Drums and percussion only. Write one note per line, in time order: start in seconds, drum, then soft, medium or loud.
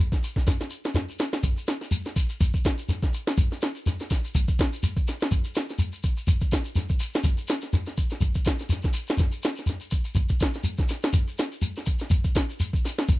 0.12 kick medium
0.12 snare soft
0.12 shekere soft
0.23 open hi-hat medium
0.23 shekere medium
0.36 kick medium
0.36 snare soft
0.36 shekere soft
0.47 kick medium
0.47 snare medium
0.47 closed hi-hat medium
0.47 shekere medium
0.60 snare soft
0.60 shekere soft
0.70 closed hi-hat medium
0.70 shekere medium
0.84 snare medium
0.84 shekere soft
0.94 snare medium
0.94 closed hi-hat medium
0.94 shekere medium
1.09 shekere soft
1.19 snare medium
1.19 closed hi-hat soft
1.19 shekere medium
1.32 snare medium
1.32 closed hi-hat medium
1.32 shekere soft
1.43 kick medium
1.43 closed hi-hat medium
1.43 shekere medium
1.56 closed hi-hat soft
1.56 shekere soft
1.67 snare medium
1.67 closed hi-hat medium
1.67 shekere medium
1.81 snare soft
1.81 shekere soft
1.91 closed hi-hat medium
1.91 shekere medium
2.05 snare soft
2.05 closed hi-hat soft
2.05 shekere soft
2.16 kick medium
2.16 open hi-hat medium
2.16 shekere medium
2.29 closed hi-hat soft
2.29 shekere soft
2.40 kick medium
2.40 closed hi-hat medium
2.40 shekere medium
2.54 kick medium
2.54 closed hi-hat soft
2.54 shekere soft
2.65 kick medium
2.65 snare medium
2.65 closed hi-hat soft
2.65 shekere medium
2.78 shekere soft
2.89 snare soft
2.89 closed hi-hat medium
2.89 shekere medium
3.02 kick medium
3.02 snare soft
3.02 shekere soft
3.13 closed hi-hat medium
3.13 shekere medium
3.27 snare medium
3.27 closed hi-hat soft
3.27 shekere soft
3.38 kick medium
3.38 closed hi-hat medium
3.38 shekere medium
3.51 snare soft
3.51 closed hi-hat soft
3.51 shekere soft
3.62 snare medium
3.62 closed hi-hat medium
3.62 shekere medium
3.75 closed hi-hat soft
3.75 shekere soft
3.86 snare soft
3.86 closed hi-hat medium
3.86 shekere medium
4.00 snare soft
4.00 closed hi-hat soft
4.00 shekere soft
4.10 kick medium
4.10 snare soft
4.10 open hi-hat medium
4.10 shekere medium
4.24 closed hi-hat soft
4.24 shekere soft
4.35 kick medium
4.35 closed hi-hat medium
4.35 shekere loud
4.48 kick medium
4.48 shekere soft
4.59 kick medium
4.59 snare medium
4.59 closed hi-hat medium
4.59 shekere medium
4.73 closed hi-hat soft
4.73 shekere soft
4.83 closed hi-hat medium
4.83 shekere medium
4.96 kick medium
4.96 closed hi-hat soft
4.96 shekere soft
5.08 snare soft
5.08 closed hi-hat medium
5.08 shekere medium
5.20 snare medium
5.20 closed hi-hat soft
5.20 shekere soft
5.31 kick medium
5.31 closed hi-hat medium
5.31 shekere medium
5.44 closed hi-hat soft
5.44 shekere soft
5.55 snare medium
5.55 closed hi-hat medium
5.55 shekere medium
5.69 snare soft
5.69 shekere soft
5.79 closed hi-hat medium
5.79 shekere medium
5.92 closed hi-hat soft
5.92 shekere soft
6.03 kick medium
6.03 open hi-hat medium
6.03 shekere medium
6.17 closed hi-hat soft
6.17 shekere soft
6.27 kick medium
6.27 closed hi-hat medium
6.27 shekere medium
6.41 kick medium
6.41 closed hi-hat soft
6.41 shekere soft
6.52 kick medium
6.52 snare medium
6.52 closed hi-hat medium
6.52 shekere medium
6.65 shekere soft
6.75 snare soft
6.75 closed hi-hat medium
6.75 shekere medium
6.89 kick medium
6.89 shekere soft
7.00 closed hi-hat medium
7.00 shekere medium
7.14 snare medium
7.14 closed hi-hat soft
7.14 shekere soft
7.24 kick loud
7.24 closed hi-hat medium
7.24 shekere medium
7.37 closed hi-hat soft
7.37 shekere soft
7.48 snare medium
7.48 closed hi-hat medium
7.48 shekere medium
7.61 snare soft
7.61 closed hi-hat soft
7.61 shekere soft
7.73 snare soft
7.73 closed hi-hat medium
7.73 shekere medium
7.86 snare soft
7.86 closed hi-hat soft
7.86 shekere soft
7.97 kick medium
7.97 open hi-hat medium
7.97 shekere medium
8.10 snare soft
8.10 closed hi-hat soft
8.10 shekere soft
8.21 kick medium
8.21 closed hi-hat medium
8.21 shekere medium
8.35 kick medium
8.35 shekere soft
8.45 kick medium
8.45 snare medium
8.45 closed hi-hat medium
8.45 shekere medium
8.59 snare soft
8.59 closed hi-hat soft
8.59 shekere soft
8.69 snare soft
8.69 closed hi-hat medium
8.69 shekere medium
8.83 kick medium
8.83 snare soft
8.83 closed hi-hat soft
8.83 shekere soft
8.93 closed hi-hat medium
8.93 shekere medium
9.07 snare medium
9.07 closed hi-hat soft
9.07 shekere soft
9.17 kick medium
9.17 snare soft
9.17 closed hi-hat medium
9.17 shekere medium
9.32 closed hi-hat soft
9.32 shekere soft
9.43 snare medium
9.43 closed hi-hat medium
9.43 shekere medium
9.56 snare soft
9.56 shekere soft
9.66 snare soft
9.66 closed hi-hat medium
9.66 shekere medium
9.80 closed hi-hat soft
9.80 shekere soft
9.91 kick medium
9.91 open hi-hat medium
9.91 shekere medium
10.04 closed hi-hat soft
10.04 shekere soft
10.15 kick medium
10.15 closed hi-hat medium
10.15 shekere loud
10.29 kick medium
10.29 closed hi-hat soft
10.29 shekere soft
10.40 kick medium
10.40 snare medium
10.40 closed hi-hat medium
10.40 shekere medium
10.53 snare soft
10.53 shekere soft
10.64 closed hi-hat medium
10.64 shekere medium
10.77 kick medium
10.77 snare soft
10.77 shekere soft
10.89 snare soft
10.89 closed hi-hat medium
10.89 shekere medium
11.03 snare medium
11.03 closed hi-hat soft
11.03 shekere soft
11.13 kick medium
11.13 closed hi-hat medium
11.13 shekere medium
11.27 closed hi-hat soft
11.27 shekere soft
11.38 snare medium
11.38 closed hi-hat medium
11.38 shekere medium
11.52 closed hi-hat soft
11.52 shekere soft
11.62 closed hi-hat medium
11.62 shekere medium
11.76 snare soft
11.76 closed hi-hat soft
11.76 shekere soft
11.86 kick medium
11.86 open hi-hat medium
11.86 shekere medium
11.99 snare soft
11.99 closed hi-hat soft
11.99 shekere soft
12.10 kick medium
12.10 closed hi-hat medium
12.10 shekere medium
12.24 kick medium
12.24 shekere soft
12.35 kick medium
12.35 snare medium
12.35 closed hi-hat medium
12.35 shekere medium
12.49 closed hi-hat soft
12.49 shekere soft
12.60 closed hi-hat medium
12.60 shekere medium
12.73 kick medium
12.73 closed hi-hat soft
12.73 shekere soft
12.85 snare soft
12.85 closed hi-hat medium
12.85 shekere medium
12.98 snare medium
12.98 closed hi-hat soft
12.98 shekere soft
13.09 kick medium
13.09 closed hi-hat medium
13.09 shekere medium